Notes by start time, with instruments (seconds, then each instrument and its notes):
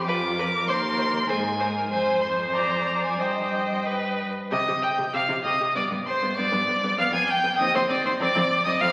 0.07 cello F2, viola F4, violin B4 D6
0.39 viola A#4, violin B4
0.68 cello D#2, violin C5 C6
0.98 violin C5
1.28 cello G#2, viola G#4, violin C5 G#5
1.60 viola A#4, violin C5
1.91 cello F2, viola C5, violin C5 G#5
2.22 violin C6
2.54 viola D5, violin A#5
3.04 violin G#5
3.20 cello G2, violin C5 G5, viola D#5
3.86 violin B4
4.51 cello C3, viola G4, violin D#5 D#6
4.68 cello C3, viola G4
4.83 violin G5 G6
4.98 cello C3, viola G4
5.13 cello C3, viola G4, violin F5 F6
5.29 cello C3, viola G4
5.44 cello C3, viola G4, violin D#5 D#6
5.60 cello C3, viola G4
5.75 cello G2, viola B3, violin D5 D6
5.90 cello G2, viola B3
6.06 violin C5 C6
6.22 cello G2, viola B3
6.36 cello G2, viola B3, violin D5 D6
6.52 cello G2, viola B3
6.68 cello G2, viola B3
6.82 cello G2, viola B3
6.97 cello F2, viola B3, violin F5 F6
7.12 cello F2, viola B3, violin G#5 G#6
7.28 violin G5 G6
7.43 cello F2, viola B3
7.58 cello D#2, viola C4, violin D#5 D#6
7.75 cello D#2, viola C4, violin C5 C6
7.89 cello D#2, viola C4, violin D5 D6
8.05 cello D#2, viola C4, violin C5 C6
8.20 cello F2, viola C4, violin D5 D6
8.35 cello F2, viola C4
8.64 cello F2, viola C4, violin D#5 D#6
8.81 cello F2, viola C4, violin F5 F6